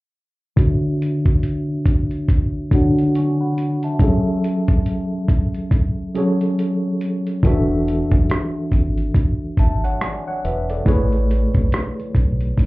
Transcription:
0.56 1.68 D3 medium
0.56 1.68 D4 medium
0.56 1.69 F#4 medium
0.56 1.69 C#5 medium
0.56 1.69 E5 medium
0.56 kick loud
0.56 closed hi-hat medium
1.02 closed hi-hat medium
1.26 kick medium
1.26 closed hi-hat soft
1.43 closed hi-hat medium
1.86 kick medium
1.86 closed hi-hat medium
2.11 closed hi-hat soft
2.28 kick medium
2.28 closed hi-hat medium
2.71 3.53 D3 medium
2.71 3.53 D4 medium
2.71 3.53 F#4 medium
2.71 3.54 C#5 medium
2.71 3.16 F#5 medium
2.71 kick medium
2.71 closed hi-hat medium
2.98 closed hi-hat soft
3.15 3.39 G#5 medium
3.15 3.39 C#6 medium
3.15 closed hi-hat medium
3.41 3.81 F#5 soft
3.41 3.81 B5 medium
3.58 closed hi-hat medium
3.83 4.02 E5 soft
3.83 4.24 A5 medium
3.83 closed hi-hat soft
3.99 5.11 F#3 medium
3.99 5.11 C#4 medium
3.99 5.12 G#4 medium
3.99 5.12 A4 medium
3.99 kick loud
3.99 closed hi-hat medium
4.04 5.13 E5 medium
4.44 closed hi-hat medium
4.68 kick medium
4.68 closed hi-hat soft
4.86 closed hi-hat medium
5.28 kick medium
5.28 closed hi-hat medium
5.54 closed hi-hat soft
5.71 kick medium
5.71 closed hi-hat medium
6.14 6.96 F#3 medium
6.14 6.96 C#4 medium
6.14 6.96 G#4 medium
6.14 6.97 A4 medium
6.14 6.97 C#5 medium
6.14 closed hi-hat medium
6.41 closed hi-hat soft
6.59 closed hi-hat medium
7.01 closed hi-hat medium
7.27 closed hi-hat soft
7.43 8.01 E1 medium
7.43 8.54 E3 medium
7.43 8.54 D4 medium
7.43 8.55 F#4 medium
7.43 8.55 A4 medium
7.43 8.56 E5 medium
7.43 kick loud
7.43 closed hi-hat medium
7.88 closed hi-hat medium
8.12 8.27 F#1 medium
8.12 kick medium
8.12 closed hi-hat soft
8.30 cross-stick medium
8.30 closed hi-hat medium
8.72 9.09 G#1 loud
8.72 kick medium
8.72 closed hi-hat medium
8.98 closed hi-hat soft
9.14 kick medium
9.14 closed hi-hat medium
9.57 9.94 G#1 medium
9.57 9.83 E5 medium
9.57 9.82 A5 medium
9.57 kick medium
9.57 closed hi-hat medium
9.84 10.00 C#5 medium
9.84 10.00 F#5 medium
9.84 closed hi-hat soft
10.01 10.26 D5 medium
10.01 10.25 G#5 medium
10.01 cross-stick loud
10.01 closed hi-hat medium
10.28 10.43 C#5 medium
10.28 10.43 F#5 medium
10.45 10.80 E1 medium
10.45 10.68 B4 soft
10.45 10.68 E5 medium
10.45 closed hi-hat medium
10.70 11.10 A4 soft
10.70 11.10 D5 medium
10.70 closed hi-hat soft
10.85 11.44 A1 medium
10.85 11.96 A3 medium
10.85 11.97 E4 medium
10.85 11.97 G#4 medium
10.85 11.98 B4 medium
10.85 11.98 C#5 medium
10.85 kick loud
10.85 closed hi-hat medium
11.12 closed hi-hat soft
11.31 closed hi-hat medium
11.54 11.69 B1 medium
11.54 kick medium
11.54 closed hi-hat soft
11.72 cross-stick loud
11.72 closed hi-hat medium
12.00 closed hi-hat soft
12.15 12.51 B1 medium
12.15 kick medium
12.15 closed hi-hat medium
12.41 closed hi-hat soft
12.58 12.66 A1 medium
12.58 kick medium
12.58 closed hi-hat medium

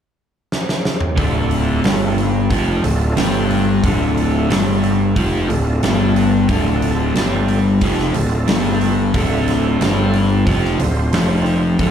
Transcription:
0.52 snare medium
0.69 snare medium
0.85 snare medium
1.00 mid tom medium
1.17 1.80 D1 medium
1.17 1.83 D2 loud
1.17 1.83 D3 loud
1.17 2.28 A3 medium
1.17 2.28 D4 medium
1.17 2.29 F4 medium
1.17 2.29 A4 medium
1.17 kick loud
1.17 open hi-hat medium
1.51 open hi-hat medium
1.84 2.47 G1 medium
1.84 2.50 G2 medium
1.84 2.50 G3 medium
1.84 snare loud
1.84 open hi-hat medium
2.18 open hi-hat soft
2.50 2.82 F1 medium
2.50 2.83 F2 medium
2.50 2.83 F3 loud
2.50 kick medium
2.50 open hi-hat medium
2.83 3.15 D1 medium
2.83 3.10 D2 medium
2.83 3.67 A3 medium
2.83 3.66 D4 medium
2.83 3.67 F4 medium
2.83 3.67 A4 medium
2.83 open hi-hat medium
3.17 3.80 G1 loud
3.17 3.83 G2 medium
3.17 3.83 G3 loud
3.17 snare loud
3.17 open hi-hat medium
3.50 open hi-hat medium
3.83 4.46 D1 medium
3.83 4.49 D2 loud
3.83 4.49 D3 loud
3.83 4.94 A3 medium
3.83 4.94 D4 medium
3.83 4.94 F4 medium
3.83 4.94 A4 medium
3.83 kick loud
3.83 open hi-hat medium
4.17 open hi-hat medium
4.50 5.13 G1 medium
4.50 5.15 G2 medium
4.50 5.16 G3 medium
4.50 snare loud
4.50 open hi-hat medium
4.83 open hi-hat soft
5.16 5.47 F1 medium
5.16 5.48 F2 medium
5.16 5.49 F3 loud
5.16 kick loud
5.16 open hi-hat medium
5.48 5.81 D1 medium
5.48 5.76 D2 medium
5.48 6.32 A3 medium
5.48 6.32 D4 medium
5.48 6.31 F4 medium
5.48 6.32 A4 medium
5.48 open hi-hat medium
5.83 6.45 G1 loud
5.83 6.48 G2 medium
5.83 6.49 G3 loud
5.83 snare loud
5.83 open hi-hat medium
6.16 open hi-hat medium
6.47 7.11 D1 medium
6.47 7.15 D2 loud
6.47 7.15 D3 loud
6.47 7.59 A3 medium
6.47 7.59 D4 medium
6.47 7.59 F4 medium
6.47 7.59 A4 medium
6.47 kick loud
6.47 open hi-hat medium
6.82 open hi-hat medium
7.15 7.77 G1 loud
7.15 7.81 G2 medium
7.15 7.81 G3 medium
7.15 snare loud
7.15 open hi-hat medium
7.48 open hi-hat soft
7.81 8.13 F1 medium
7.81 8.14 F2 medium
7.81 8.14 F3 loud
7.81 kick medium
7.81 open hi-hat medium
7.99 snare soft
8.14 8.46 D1 medium
8.14 8.42 D2 medium
8.14 8.97 A3 medium
8.14 8.98 D4 medium
8.14 8.98 F4 medium
8.14 8.98 A4 medium
8.14 open hi-hat medium
8.48 9.11 G1 medium
8.48 9.13 G2 medium
8.48 9.14 G3 loud
8.48 snare loud
8.48 open hi-hat medium
8.81 open hi-hat medium
9.14 9.77 D1 medium
9.14 9.80 D2 medium
9.14 9.80 D3 loud
9.14 10.24 A3 medium
9.14 10.25 D4 medium
9.14 10.24 F4 medium
9.14 10.25 A4 medium
9.14 kick loud
9.14 open hi-hat medium
9.48 snare soft
9.48 open hi-hat medium
9.80 10.43 G1 medium
9.80 10.46 G2 medium
9.80 10.46 G3 loud
9.80 snare loud
9.80 open hi-hat medium
10.13 open hi-hat medium
10.46 10.78 F1 medium
10.46 10.79 F2 medium
10.46 10.79 F3 loud
10.46 kick loud
10.46 open hi-hat medium
10.65 snare soft
10.79 11.11 D1 medium
10.79 11.07 D2 medium
10.79 11.62 A3 medium
10.79 11.63 D4 medium
10.79 11.63 F4 medium
10.79 11.63 C5 medium
10.79 open hi-hat medium
11.13 11.76 F1 medium
11.13 11.79 F2 medium
11.13 11.79 F3 loud
11.13 snare loud
11.13 open hi-hat medium
11.46 open hi-hat medium
11.79 11.91 D1 medium
11.79 11.91 D2 medium
11.79 11.91 D3 medium
11.79 11.91 A3 medium
11.79 11.91 D4 medium
11.79 11.91 F4 medium
11.79 11.91 A4 medium
11.79 kick loud
11.79 open hi-hat medium

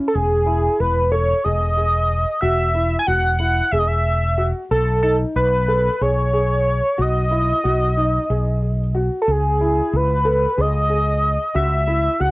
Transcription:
0.08 0.16 A4 medium
0.15 0.68 E1 medium
0.15 0.81 G#4 medium
0.46 0.94 E4 medium
0.80 1.33 E1 medium
0.80 1.11 B4 medium
1.12 1.36 A4 medium
1.12 1.45 C#5 medium
1.44 2.24 E1 medium
1.44 1.69 G#4 medium
1.44 2.40 D#5 medium
1.77 2.25 G#4 medium
2.41 2.95 E1 medium
2.41 2.66 F#4 medium
2.41 2.96 E5 medium
2.74 2.99 E4 medium
2.99 3.08 G#5 medium
3.07 3.61 E1 medium
3.07 3.31 F#4 medium
3.07 3.38 F#5 loud
3.39 3.64 E4 medium
3.39 3.73 F#5 medium
3.71 4.52 E1 medium
3.71 4.21 G#4 medium
3.71 3.80 E5 medium
3.79 3.89 D#5 medium
3.87 4.47 E5 loud
4.38 4.62 F#4 medium
4.71 5.24 B1 medium
4.71 5.01 A4 medium
5.03 5.51 D#4 medium
5.03 5.17 A4 medium
5.36 5.89 B1 medium
5.36 6.03 B4 medium
5.68 5.92 A4 medium
6.01 6.80 B1 medium
6.01 6.25 G#4 medium
6.01 7.03 C#5 medium
6.33 6.81 G#4 medium
6.98 7.52 B1 medium
6.98 7.22 F#4 medium
6.98 8.96 D#5 medium
7.31 7.55 E4 medium
7.64 8.17 B1 medium
7.64 7.88 F#4 medium
7.97 8.21 D#4 medium
8.30 9.09 B1 medium
8.30 8.78 G#4 medium
8.95 9.19 F#4 medium
9.22 9.33 A4 medium
9.28 9.80 C#2 medium
9.28 9.98 G#4 medium
9.61 10.08 E4 medium
9.93 10.46 C#2 medium
9.93 10.62 B4 medium
10.25 10.49 A4 medium
10.58 11.37 C#2 medium
10.58 10.81 G#4 medium
10.58 11.55 D#5 loud
10.90 11.37 G#4 medium
11.55 12.08 C#2 medium
11.55 11.79 F#4 medium
11.55 12.22 E5 loud
11.87 12.11 E4 medium
12.20 12.31 C#2 medium
12.20 12.31 F#4 medium
12.20 12.31 F#5 loud

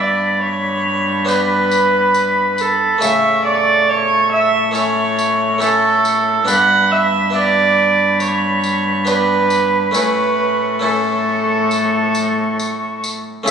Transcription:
0.00 2.98 G2 medium
0.00 2.99 G2 soft
0.00 1.23 B3 soft
0.00 1.24 D4 soft
0.00 1.25 G4 soft
0.00 0.41 D5 medium
0.00 1.26 B5 medium
0.42 1.30 C#5 medium
1.25 2.96 B3 soft
1.25 2.97 D4 soft
1.25 2.98 G4 soft
1.25 2.62 B4 medium
1.25 tambourine soft
1.30 3.00 B5 medium
1.71 tambourine soft
2.14 tambourine soft
2.58 3.02 A4 medium
2.58 tambourine soft
2.98 6.44 A2 soft
2.98 4.70 C#3 soft
2.98 4.69 A3 soft
2.98 4.70 E4 soft
2.98 3.87 C#6 medium
2.98 tambourine medium
3.02 6.44 A2 medium
3.02 3.45 E5 medium
3.45 3.91 D5 medium
3.89 4.31 C#5 medium
3.89 4.74 C#6 medium
4.32 4.74 E5 medium
4.71 5.57 A3 soft
4.71 5.58 C#4 soft
4.71 5.58 E4 medium
4.71 5.60 C#5 medium
4.71 5.60 C#6 medium
4.71 tambourine soft
5.19 tambourine medium
5.58 6.44 A3 soft
5.58 6.44 C#4 soft
5.58 6.45 E4 soft
5.58 6.19 C#6 medium
5.58 tambourine soft
5.63 6.47 A4 medium
6.05 tambourine soft
6.45 9.97 G2 medium
6.45 9.91 G2 medium
6.45 7.29 B3 soft
6.45 7.30 D4 soft
6.45 7.31 G4 soft
6.45 6.93 F#5 loud
6.45 7.30 B5 medium
6.45 tambourine medium
6.92 7.34 E5 medium
7.30 9.01 B3 soft
7.30 9.02 D4 soft
7.30 9.03 G4 soft
7.35 8.19 D5 medium
7.35 9.04 B5 medium
8.20 9.09 C#5 medium
8.20 tambourine soft
8.64 tambourine soft
9.05 9.91 B3 soft
9.05 9.92 D4 soft
9.05 9.92 G4 soft
9.05 9.94 B4 medium
9.05 9.93 B5 medium
9.05 tambourine soft
9.50 tambourine soft
9.91 13.23 A2 soft
9.91 13.27 A2 medium
9.91 10.78 A3 soft
9.91 10.79 C#4 soft
9.91 10.80 E4 soft
9.91 10.86 B4 medium
9.91 tambourine medium
9.95 10.82 C#6 medium
10.79 13.41 A3 soft
10.79 13.42 C#4 soft
10.79 13.43 E4 soft
10.83 13.04 A4 medium
10.83 13.11 C#6 medium
11.71 tambourine soft
12.15 tambourine soft
12.60 tambourine soft
13.04 tambourine soft
13.43 13.51 A2 medium
13.43 13.51 C#3 soft
13.43 13.51 A3 medium
13.43 13.51 C#4 medium
13.43 13.51 E4 soft
13.47 tambourine medium

